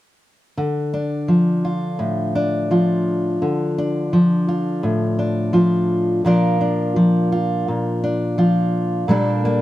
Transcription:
0.57 3.37 D3 medium
0.94 2.35 D4 soft
1.28 2.70 F3 medium
1.65 2.71 F4 soft
1.99 3.37 A2 soft
2.35 3.78 D4 soft
2.71 4.13 F3 soft
2.71 4.48 F4 soft
3.42 6.21 D3 medium
3.78 5.18 D4 soft
4.13 5.52 F3 medium
4.48 5.53 F4 soft
4.83 6.21 A2 medium
5.19 6.26 D4 soft
5.53 6.24 F3 medium
5.53 6.21 F4 soft
6.25 7.68 A#2 medium
6.25 6.95 F3 medium
6.25 6.60 D4 soft
6.25 7.31 F4 medium
6.25 9.06 A#4 medium
6.61 8.03 D4 soft
6.96 8.37 F3 medium
7.32 8.37 F4 medium
7.68 9.05 A#2 soft
8.04 9.10 D4 soft
8.38 9.09 F3 soft
8.38 9.05 F4 soft
9.08 9.62 A#2 medium
9.08 9.62 G3 soft
9.08 9.44 A#3 soft
9.08 9.62 D4 soft
9.08 9.62 A4 medium
9.45 9.62 A#3 soft

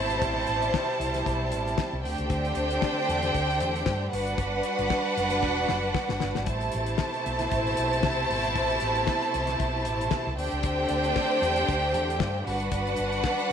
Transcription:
0.00 0.22 G#1 medium
0.00 2.00 B2 medium
0.00 2.00 C3 medium
0.00 0.20 A3 medium
0.00 2.00 E4 medium
0.00 2.00 C5 medium
0.00 2.00 A5 medium
0.10 closed hi-hat soft
0.21 0.43 A1 medium
0.21 2.02 G3 medium
0.21 kick loud
0.21 closed hi-hat medium
0.47 0.69 A1 medium
0.47 closed hi-hat medium
0.62 closed hi-hat soft
0.74 kick medium
0.74 snare loud
1.00 1.21 C2 medium
1.00 closed hi-hat medium
1.14 snare soft
1.14 closed hi-hat soft
1.26 1.52 B1 medium
1.26 kick medium
1.26 closed hi-hat medium
1.52 1.73 A1 medium
1.52 closed hi-hat medium
1.67 closed hi-hat soft
1.78 kick medium
1.78 snare loud
1.93 2.05 C2 medium
2.02 2.16 D2 loud
2.02 4.09 D3 medium
2.02 4.09 A3 medium
2.02 4.09 C4 medium
2.02 4.08 D4 medium
2.02 4.09 G4 medium
2.02 4.08 C5 medium
2.02 4.08 G5 medium
2.02 open hi-hat medium
2.18 2.28 C#2 medium
2.18 closed hi-hat soft
2.30 2.51 D2 loud
2.30 kick medium
2.30 closed hi-hat medium
2.45 closed hi-hat soft
2.55 2.77 D2 loud
2.55 closed hi-hat medium
2.71 closed hi-hat soft
2.82 kick loud
2.82 snare loud
3.09 3.29 E2 medium
3.09 closed hi-hat medium
3.23 snare soft
3.23 closed hi-hat soft
3.35 3.61 D2 loud
3.35 kick medium
3.35 closed hi-hat medium
3.50 closed hi-hat soft
3.60 3.81 E2 medium
3.60 closed hi-hat medium
3.76 closed hi-hat soft
3.86 4.07 G2 medium
3.86 kick loud
3.86 snare loud
4.11 4.33 G1 medium
4.11 6.45 G3 medium
4.11 6.42 D4 medium
4.11 6.45 D4 medium
4.11 6.45 F#4 medium
4.11 6.42 B4 medium
4.11 6.45 B4 medium
4.11 6.42 F#5 medium
4.11 open hi-hat medium
4.27 closed hi-hat soft
4.38 4.59 G1 medium
4.38 kick medium
4.38 closed hi-hat medium
4.63 closed hi-hat medium
4.79 4.88 G1 medium
4.79 closed hi-hat soft
4.90 kick loud
4.90 snare medium
5.17 5.43 F#1 medium
5.17 closed hi-hat medium
5.30 snare soft
5.30 closed hi-hat medium
5.43 5.64 E1 medium
5.43 kick medium
5.43 snare soft
5.69 5.90 F#1 medium
5.69 snare medium
5.95 kick loud
5.95 snare medium
6.09 6.19 G1 medium
6.09 snare medium
6.20 6.33 G1 medium
6.20 snare medium
6.35 6.46 G#1 medium
6.35 snare medium
6.46 6.68 A1 medium
6.46 10.34 B2 medium
6.46 10.34 C3 medium
6.46 10.34 A3 medium
6.46 10.34 E4 medium
6.46 10.34 C5 medium
6.46 10.34 A5 medium
6.46 kick medium
6.46 closed hi-hat medium
6.61 closed hi-hat soft
6.72 6.95 A1 medium
6.72 closed hi-hat medium
6.86 closed hi-hat soft
6.98 kick medium
6.98 snare loud
7.14 closed hi-hat soft
7.26 7.47 B1 medium
7.26 closed hi-hat medium
7.39 snare soft
7.39 closed hi-hat soft
7.51 7.73 A1 medium
7.51 kick medium
7.51 closed hi-hat medium
7.67 closed hi-hat soft
7.77 8.04 B1 medium
7.77 closed hi-hat medium
7.93 closed hi-hat soft
8.03 8.25 C2 loud
8.03 kick medium
8.03 snare loud
8.30 8.56 G#1 medium
8.30 open hi-hat medium
8.44 closed hi-hat soft
8.55 8.77 A1 loud
8.55 kick loud
8.55 closed hi-hat medium
8.70 closed hi-hat soft
8.80 9.03 A1 medium
8.80 closed hi-hat medium
8.95 closed hi-hat soft
9.07 kick loud
9.07 snare loud
9.22 closed hi-hat soft
9.34 9.55 C2 medium
9.34 closed hi-hat medium
9.47 snare soft
9.47 closed hi-hat soft
9.60 9.86 B1 medium
9.60 kick medium
9.60 closed hi-hat medium
9.85 10.07 A1 medium
9.85 closed hi-hat medium
10.01 closed hi-hat soft
10.11 kick loud
10.11 snare loud
10.27 10.37 C2 loud
10.37 10.49 D2 medium
10.37 12.44 D3 medium
10.37 12.44 A3 medium
10.37 12.44 C4 medium
10.37 12.43 D4 medium
10.37 12.44 G4 medium
10.37 12.43 C5 medium
10.37 12.42 G5 medium
10.37 open hi-hat medium
10.52 10.62 C#2 medium
10.52 closed hi-hat soft
10.63 10.85 D2 loud
10.63 kick medium
10.63 closed hi-hat medium
10.88 11.11 D2 loud
10.88 closed hi-hat medium
11.04 closed hi-hat soft
11.16 kick loud
11.16 snare loud
11.42 11.63 E2 medium
11.42 closed hi-hat medium
11.56 closed hi-hat soft
11.69 11.94 D2 loud
11.69 kick medium
11.69 closed hi-hat medium
11.94 12.20 E2 medium
11.94 closed hi-hat medium
12.10 closed hi-hat soft
12.20 12.41 G2 loud
12.20 kick loud
12.20 snare loud
12.45 12.67 G1 medium
12.45 13.52 G3 medium
12.45 13.52 D4 medium
12.45 13.52 F#4 medium
12.45 13.52 B4 medium
12.45 13.52 F#5 medium
12.45 open hi-hat medium
12.60 closed hi-hat soft
12.72 12.93 G1 medium
12.72 kick medium
12.72 closed hi-hat medium
12.87 closed hi-hat soft
12.96 13.19 G1 medium
12.96 closed hi-hat medium
13.12 closed hi-hat soft
13.24 kick loud
13.24 snare loud
13.39 closed hi-hat soft

